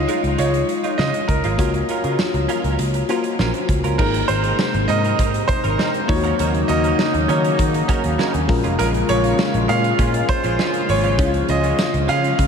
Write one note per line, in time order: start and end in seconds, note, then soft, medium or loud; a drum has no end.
0.00 1.54 G#3 medium
0.00 1.55 D#4 medium
0.00 1.55 F4 medium
0.00 1.56 C#5 medium
0.00 0.40 D#5 medium
0.08 0.23 G#3 medium
0.08 0.23 D#4 medium
0.08 0.22 F4 medium
0.08 closed hi-hat medium
0.23 0.35 C#2 medium
0.23 0.37 G#3 soft
0.23 0.38 D#4 medium
0.23 0.38 F4 medium
0.23 closed hi-hat soft
0.38 0.61 C#2 medium
0.38 0.60 G#3 medium
0.38 0.53 D#4 medium
0.38 0.52 F4 medium
0.38 0.95 C#5 medium
0.38 closed hi-hat medium
0.54 muted clean electric guitar stroke soft
0.54 closed hi-hat medium
0.68 muted clean electric guitar stroke soft
0.68 closed hi-hat medium
0.83 0.97 G#3 soft
0.83 0.98 D#4 medium
0.83 0.99 F4 medium
0.83 closed hi-hat soft
0.98 1.10 C#3 medium
0.98 1.20 G#3 medium
0.98 1.14 D#4 medium
0.98 1.13 F4 loud
0.98 1.29 D#5 medium
0.98 snare medium
1.14 muted clean electric guitar stroke soft
1.14 closed hi-hat soft
1.28 1.40 C#2 medium
1.28 2.44 A#4 medium
1.28 muted clean electric guitar stroke soft
1.28 kick medium
1.28 closed hi-hat medium
1.44 1.55 G#1 medium
1.44 1.62 G#3 medium
1.44 1.58 D#4 medium
1.44 1.58 F4 medium
1.44 closed hi-hat soft
1.58 1.81 C#2 loud
1.58 3.05 A#3 medium
1.58 1.80 C#4 medium
1.58 3.06 F4 medium
1.58 1.74 F4 medium
1.58 3.06 F#4 medium
1.58 1.73 A#4 medium
1.58 3.06 C#5 medium
1.58 kick medium
1.58 closed hi-hat medium
1.74 muted clean electric guitar stroke soft
1.74 closed hi-hat soft
1.89 2.04 C#4 medium
1.89 2.03 F4 medium
1.89 2.03 A#4 medium
1.89 closed hi-hat medium
2.04 2.15 C#3 medium
2.04 2.18 C#4 medium
2.04 2.18 F4 medium
2.04 2.19 A#4 medium
2.04 closed hi-hat soft
2.19 muted clean electric guitar stroke soft
2.19 snare loud
2.34 2.45 C#2 medium
2.34 muted clean electric guitar stroke soft
2.34 closed hi-hat soft
2.49 2.64 C#4 medium
2.49 2.63 F4 medium
2.49 2.62 A#4 medium
2.49 closed hi-hat medium
2.63 2.75 C#2 medium
2.63 2.78 C#4 soft
2.63 2.78 F4 soft
2.63 2.79 A#4 medium
2.63 closed hi-hat soft
2.79 3.02 C#2 medium
2.79 muted clean electric guitar stroke soft
2.79 closed hi-hat medium
2.94 muted clean electric guitar stroke soft
2.94 closed hi-hat medium
3.09 3.97 A#3 medium
3.09 3.31 C#4 medium
3.09 3.99 F4 soft
3.09 3.24 F4 medium
3.09 3.99 F#4 soft
3.09 3.23 A#4 medium
3.09 3.99 C5 medium
3.09 closed hi-hat medium
3.24 muted clean electric guitar stroke soft
3.24 closed hi-hat soft
3.39 3.50 A#1 medium
3.39 3.61 C#4 medium
3.39 3.54 F4 medium
3.39 3.53 A#4 medium
3.39 snare medium
3.54 muted clean electric guitar stroke soft
3.54 closed hi-hat soft
3.69 3.80 C#2 medium
3.69 muted clean electric guitar stroke soft
3.69 kick medium
3.69 closed hi-hat medium
3.84 3.95 C#2 medium
3.84 3.98 C#4 soft
3.84 3.99 F4 medium
3.84 3.99 A#4 medium
3.84 closed hi-hat soft
3.98 4.21 G#1 loud
3.98 6.07 C3 medium
3.98 6.07 G#3 medium
3.98 6.04 A#3 medium
3.98 11.15 A#3 medium
3.98 4.20 C4 medium
3.98 6.07 D#4 medium
3.98 6.05 D#4 medium
3.98 4.14 D#4 medium
3.98 6.05 G#4 medium
3.98 4.29 A#4 medium
3.98 4.13 A#4 medium
3.98 6.06 C5 medium
3.98 kick medium
3.98 crash medium
4.14 muted clean electric guitar stroke soft
4.14 closed hi-hat soft
4.28 4.52 G#1 medium
4.28 4.44 C4 medium
4.28 4.43 D#4 medium
4.28 4.42 A#4 medium
4.28 4.90 C5 loud
4.28 closed hi-hat medium
4.44 4.58 C4 soft
4.44 4.58 D#4 medium
4.44 4.58 A#4 medium
4.44 closed hi-hat soft
4.59 muted clean electric guitar stroke soft
4.59 snare loud
4.74 4.85 G#1 loud
4.74 muted clean electric guitar stroke soft
4.74 closed hi-hat soft
4.88 5.12 G#2 medium
4.88 5.04 C4 medium
4.88 5.03 D#4 medium
4.88 5.02 A#4 medium
4.88 5.50 D#5 loud
4.88 closed hi-hat medium
5.03 5.17 C4 soft
5.03 5.18 D#4 medium
5.03 5.19 A#4 medium
5.03 closed hi-hat soft
5.18 5.41 G#2 medium
5.18 5.40 C4 medium
5.18 5.34 D#4 medium
5.18 5.33 A#4 medium
5.18 kick medium
5.18 closed hi-hat medium
5.34 muted clean electric guitar stroke soft
5.34 closed hi-hat medium
5.48 6.10 C5 loud
5.48 muted clean electric guitar stroke soft
5.48 kick medium
5.48 closed hi-hat medium
5.64 5.75 G#1 medium
5.64 5.77 C4 soft
5.64 5.78 D#4 soft
5.64 5.79 A#4 medium
5.64 closed hi-hat soft
5.78 6.00 C4 medium
5.78 5.94 D#4 medium
5.78 5.92 A#4 medium
5.78 snare medium
5.94 muted clean electric guitar stroke soft
5.94 closed hi-hat soft
6.08 6.32 D#2 loud
6.08 11.15 C#3 medium
6.08 8.46 F#3 medium
6.08 8.44 A#3 medium
6.08 8.45 D#4 medium
6.08 8.46 D#4 medium
6.08 6.16 F4 soft
6.08 6.70 C#5 medium
6.08 8.45 C#5 medium
6.08 muted clean electric guitar stroke soft
6.08 kick loud
6.08 open hi-hat medium
6.16 8.48 F#4 medium
6.24 6.37 C#4 medium
6.24 6.38 F#4 medium
6.24 6.39 A#4 medium
6.24 closed hi-hat soft
6.39 6.62 D#2 loud
6.39 6.60 C#4 medium
6.39 6.53 F#4 medium
6.39 6.53 A#4 medium
6.39 closed hi-hat medium
6.54 muted clean electric guitar stroke soft
6.54 closed hi-hat soft
6.68 6.92 D#2 loud
6.68 6.84 C#4 medium
6.68 6.83 F#4 medium
6.68 6.83 A#4 medium
6.68 7.30 D#5 loud
6.68 closed hi-hat medium
6.84 6.97 C#4 soft
6.84 6.98 F#4 medium
6.84 6.98 A#4 medium
6.84 closed hi-hat soft
6.99 muted clean electric guitar stroke soft
6.99 snare loud
7.14 7.25 D#2 medium
7.14 muted clean electric guitar stroke soft
7.14 closed hi-hat soft
7.28 7.52 D#3 medium
7.28 7.44 C#4 medium
7.28 7.43 F#4 medium
7.28 7.43 A#4 medium
7.28 8.15 C#5 medium
7.28 closed hi-hat medium
7.44 7.58 C#4 soft
7.44 7.58 F#4 soft
7.44 7.58 A#4 medium
7.44 closed hi-hat soft
7.59 7.81 D#3 loud
7.59 muted clean electric guitar stroke soft
7.59 kick medium
7.59 closed hi-hat medium
7.74 muted clean electric guitar stroke soft
7.74 closed hi-hat medium
7.88 8.10 C#4 medium
7.88 8.03 F#4 medium
7.88 8.02 A#4 medium
7.88 kick loud
7.88 closed hi-hat medium
8.04 8.15 D#2 medium
8.04 muted clean electric guitar stroke soft
8.04 closed hi-hat soft
8.18 8.40 C#4 medium
8.18 8.33 F#4 medium
8.18 8.32 A#4 medium
8.18 snare medium
8.34 8.45 D#2 medium
8.34 muted clean electric guitar stroke medium
8.34 closed hi-hat soft
8.48 8.60 A#1 loud
8.48 10.84 G#3 medium
8.48 12.47 G#3 medium
8.48 10.85 C#4 medium
8.48 12.47 F4 loud
8.48 10.85 F4 medium
8.48 10.85 A#4 medium
8.48 muted clean electric guitar stroke soft
8.48 kick loud
8.48 open hi-hat medium
8.64 8.76 F1 medium
8.64 8.77 G#3 medium
8.64 8.78 C#4 medium
8.64 8.79 F4 medium
8.64 closed hi-hat medium
8.78 9.02 A#1 loud
8.78 9.00 G#3 medium
8.78 8.93 C#4 medium
8.78 8.93 F4 medium
8.78 8.85 A#4 loud
8.78 closed hi-hat medium
8.94 muted clean electric guitar stroke soft
8.94 closed hi-hat soft
9.09 9.32 A#1 loud
9.09 9.24 G#3 medium
9.09 9.23 C#4 medium
9.09 9.22 F4 medium
9.09 9.71 C#5 loud
9.09 closed hi-hat medium
9.24 9.37 G#3 medium
9.24 9.38 C#4 medium
9.24 9.38 F4 medium
9.24 closed hi-hat soft
9.39 snare loud
9.53 9.65 A#1 loud
9.53 muted clean electric guitar stroke soft
9.53 closed hi-hat soft
9.68 9.92 A#2 loud
9.68 9.84 G#3 medium
9.68 9.83 C#4 medium
9.68 9.82 F4 loud
9.68 10.31 F5 loud
9.68 closed hi-hat medium
9.84 9.97 G#3 soft
9.84 9.98 C#4 medium
9.84 9.99 F4 medium
9.84 closed hi-hat soft
9.99 10.21 A#2 loud
9.99 10.20 G#3 medium
9.99 10.13 C#4 medium
9.99 10.13 F4 medium
9.99 kick medium
9.99 closed hi-hat medium
10.14 muted clean electric guitar stroke soft
10.14 closed hi-hat medium
10.29 10.91 C5 loud
10.29 muted clean electric guitar stroke soft
10.29 kick loud
10.29 closed hi-hat medium
10.44 10.55 A#1 medium
10.44 10.57 G#3 medium
10.44 10.58 C#4 medium
10.44 10.59 F4 medium
10.44 closed hi-hat soft
10.59 10.80 G#3 medium
10.59 10.74 C#4 medium
10.59 10.73 F4 loud
10.59 snare medium
10.74 muted clean electric guitar stroke soft
10.74 closed hi-hat soft
10.89 11.19 G#1 medium
10.89 11.45 C#5 loud
10.89 muted clean electric guitar stroke soft
10.89 open hi-hat medium
11.04 11.17 G#3 medium
11.04 11.18 C#4 medium
11.04 11.19 F4 medium
11.04 closed hi-hat soft
11.17 11.41 C#2 loud
11.17 12.47 C#3 medium
11.17 12.47 F3 medium
11.17 12.47 G#3 medium
11.17 11.40 G#3 medium
11.17 12.47 C#4 medium
11.17 11.33 C#4 medium
11.17 11.25 E4 soft
11.17 11.32 F4 loud
11.17 12.47 C#5 medium
11.17 kick loud
11.17 closed hi-hat medium
11.26 12.47 F4 medium
11.34 muted clean electric guitar stroke soft
11.34 closed hi-hat soft
11.48 11.71 C#2 loud
11.48 11.64 G#3 medium
11.48 11.63 C#4 medium
11.48 11.62 F4 medium
11.48 12.05 D#5 loud
11.48 closed hi-hat medium
11.63 11.77 G#3 medium
11.63 11.78 C#4 medium
11.63 11.78 F4 medium
11.63 closed hi-hat soft
11.78 muted clean electric guitar stroke soft
11.78 snare loud
11.78 tambourine medium
11.93 12.05 C#2 loud
11.93 muted clean electric guitar stroke soft
11.93 closed hi-hat soft
12.08 12.31 C#3 medium
12.08 12.23 G#3 medium
12.08 12.23 C#4 medium
12.08 12.22 F4 medium
12.08 12.47 F5 loud
12.08 closed hi-hat medium
12.23 12.37 G#3 medium
12.23 12.37 C#4 medium
12.23 12.38 F4 medium
12.23 closed hi-hat soft
12.38 12.47 C#3 loud
12.38 muted clean electric guitar stroke soft
12.38 kick medium
12.38 closed hi-hat medium